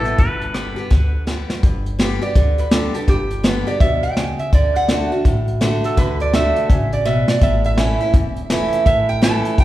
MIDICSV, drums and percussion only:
0, 0, Header, 1, 2, 480
1, 0, Start_track
1, 0, Tempo, 361446
1, 251, Time_signature, 4, 2, 24, 8
1, 12807, End_track
2, 0, Start_track
2, 0, Title_t, "Drums"
2, 67, Note_on_c, 9, 42, 70
2, 200, Note_off_c, 9, 42, 0
2, 246, Note_on_c, 9, 42, 75
2, 247, Note_on_c, 9, 36, 110
2, 379, Note_off_c, 9, 42, 0
2, 380, Note_off_c, 9, 36, 0
2, 547, Note_on_c, 9, 42, 56
2, 679, Note_off_c, 9, 42, 0
2, 723, Note_on_c, 9, 37, 107
2, 723, Note_on_c, 9, 42, 78
2, 856, Note_off_c, 9, 37, 0
2, 856, Note_off_c, 9, 42, 0
2, 1029, Note_on_c, 9, 42, 57
2, 1161, Note_off_c, 9, 42, 0
2, 1209, Note_on_c, 9, 36, 108
2, 1209, Note_on_c, 9, 38, 53
2, 1342, Note_off_c, 9, 36, 0
2, 1342, Note_off_c, 9, 38, 0
2, 1688, Note_on_c, 9, 38, 75
2, 1821, Note_off_c, 9, 38, 0
2, 1989, Note_on_c, 9, 38, 77
2, 2122, Note_off_c, 9, 38, 0
2, 2168, Note_on_c, 9, 36, 105
2, 2171, Note_on_c, 9, 42, 81
2, 2301, Note_off_c, 9, 36, 0
2, 2303, Note_off_c, 9, 42, 0
2, 2469, Note_on_c, 9, 42, 59
2, 2602, Note_off_c, 9, 42, 0
2, 2648, Note_on_c, 9, 38, 89
2, 2648, Note_on_c, 9, 42, 73
2, 2780, Note_off_c, 9, 38, 0
2, 2780, Note_off_c, 9, 42, 0
2, 2947, Note_on_c, 9, 42, 57
2, 3080, Note_off_c, 9, 42, 0
2, 3126, Note_on_c, 9, 42, 86
2, 3128, Note_on_c, 9, 36, 115
2, 3258, Note_off_c, 9, 42, 0
2, 3260, Note_off_c, 9, 36, 0
2, 3427, Note_on_c, 9, 42, 69
2, 3560, Note_off_c, 9, 42, 0
2, 3603, Note_on_c, 9, 38, 109
2, 3603, Note_on_c, 9, 42, 82
2, 3736, Note_off_c, 9, 38, 0
2, 3736, Note_off_c, 9, 42, 0
2, 3908, Note_on_c, 9, 42, 74
2, 4041, Note_off_c, 9, 42, 0
2, 4085, Note_on_c, 9, 42, 83
2, 4087, Note_on_c, 9, 36, 107
2, 4218, Note_off_c, 9, 42, 0
2, 4220, Note_off_c, 9, 36, 0
2, 4388, Note_on_c, 9, 42, 62
2, 4521, Note_off_c, 9, 42, 0
2, 4569, Note_on_c, 9, 38, 108
2, 4569, Note_on_c, 9, 42, 69
2, 4702, Note_off_c, 9, 38, 0
2, 4702, Note_off_c, 9, 42, 0
2, 4874, Note_on_c, 9, 42, 58
2, 5007, Note_off_c, 9, 42, 0
2, 5052, Note_on_c, 9, 36, 121
2, 5056, Note_on_c, 9, 42, 78
2, 5185, Note_off_c, 9, 36, 0
2, 5188, Note_off_c, 9, 42, 0
2, 5353, Note_on_c, 9, 42, 60
2, 5486, Note_off_c, 9, 42, 0
2, 5533, Note_on_c, 9, 38, 101
2, 5533, Note_on_c, 9, 42, 77
2, 5666, Note_off_c, 9, 38, 0
2, 5666, Note_off_c, 9, 42, 0
2, 5831, Note_on_c, 9, 42, 64
2, 5964, Note_off_c, 9, 42, 0
2, 6010, Note_on_c, 9, 42, 82
2, 6012, Note_on_c, 9, 36, 103
2, 6143, Note_off_c, 9, 42, 0
2, 6145, Note_off_c, 9, 36, 0
2, 6312, Note_on_c, 9, 42, 63
2, 6445, Note_off_c, 9, 42, 0
2, 6486, Note_on_c, 9, 38, 105
2, 6486, Note_on_c, 9, 42, 74
2, 6619, Note_off_c, 9, 38, 0
2, 6619, Note_off_c, 9, 42, 0
2, 6792, Note_on_c, 9, 42, 54
2, 6924, Note_off_c, 9, 42, 0
2, 6973, Note_on_c, 9, 36, 109
2, 6973, Note_on_c, 9, 42, 80
2, 7106, Note_off_c, 9, 36, 0
2, 7106, Note_off_c, 9, 42, 0
2, 7271, Note_on_c, 9, 42, 57
2, 7404, Note_off_c, 9, 42, 0
2, 7453, Note_on_c, 9, 38, 93
2, 7453, Note_on_c, 9, 42, 86
2, 7585, Note_off_c, 9, 38, 0
2, 7585, Note_off_c, 9, 42, 0
2, 7754, Note_on_c, 9, 42, 71
2, 7886, Note_off_c, 9, 42, 0
2, 7931, Note_on_c, 9, 42, 87
2, 7933, Note_on_c, 9, 36, 96
2, 8064, Note_off_c, 9, 42, 0
2, 8065, Note_off_c, 9, 36, 0
2, 8231, Note_on_c, 9, 42, 66
2, 8364, Note_off_c, 9, 42, 0
2, 8413, Note_on_c, 9, 38, 102
2, 8413, Note_on_c, 9, 42, 75
2, 8546, Note_off_c, 9, 38, 0
2, 8546, Note_off_c, 9, 42, 0
2, 8713, Note_on_c, 9, 42, 62
2, 8845, Note_off_c, 9, 42, 0
2, 8893, Note_on_c, 9, 36, 112
2, 8895, Note_on_c, 9, 42, 84
2, 9025, Note_off_c, 9, 36, 0
2, 9028, Note_off_c, 9, 42, 0
2, 9194, Note_on_c, 9, 42, 61
2, 9327, Note_off_c, 9, 42, 0
2, 9367, Note_on_c, 9, 38, 56
2, 9500, Note_off_c, 9, 38, 0
2, 9667, Note_on_c, 9, 38, 91
2, 9800, Note_off_c, 9, 38, 0
2, 9846, Note_on_c, 9, 42, 74
2, 9847, Note_on_c, 9, 36, 103
2, 9978, Note_off_c, 9, 42, 0
2, 9980, Note_off_c, 9, 36, 0
2, 10147, Note_on_c, 9, 42, 62
2, 10280, Note_off_c, 9, 42, 0
2, 10325, Note_on_c, 9, 38, 100
2, 10325, Note_on_c, 9, 42, 80
2, 10457, Note_off_c, 9, 38, 0
2, 10457, Note_off_c, 9, 42, 0
2, 10626, Note_on_c, 9, 42, 54
2, 10758, Note_off_c, 9, 42, 0
2, 10805, Note_on_c, 9, 36, 114
2, 10806, Note_on_c, 9, 42, 79
2, 10938, Note_off_c, 9, 36, 0
2, 10939, Note_off_c, 9, 42, 0
2, 11106, Note_on_c, 9, 42, 67
2, 11239, Note_off_c, 9, 42, 0
2, 11286, Note_on_c, 9, 38, 109
2, 11286, Note_on_c, 9, 42, 87
2, 11419, Note_off_c, 9, 38, 0
2, 11419, Note_off_c, 9, 42, 0
2, 11586, Note_on_c, 9, 42, 79
2, 11719, Note_off_c, 9, 42, 0
2, 11765, Note_on_c, 9, 36, 102
2, 11765, Note_on_c, 9, 42, 81
2, 11897, Note_off_c, 9, 42, 0
2, 11898, Note_off_c, 9, 36, 0
2, 12065, Note_on_c, 9, 42, 63
2, 12198, Note_off_c, 9, 42, 0
2, 12251, Note_on_c, 9, 38, 113
2, 12251, Note_on_c, 9, 42, 84
2, 12384, Note_off_c, 9, 38, 0
2, 12384, Note_off_c, 9, 42, 0
2, 12548, Note_on_c, 9, 42, 68
2, 12681, Note_off_c, 9, 42, 0
2, 12726, Note_on_c, 9, 36, 113
2, 12727, Note_on_c, 9, 42, 87
2, 12807, Note_off_c, 9, 36, 0
2, 12807, Note_off_c, 9, 42, 0
2, 12807, End_track
0, 0, End_of_file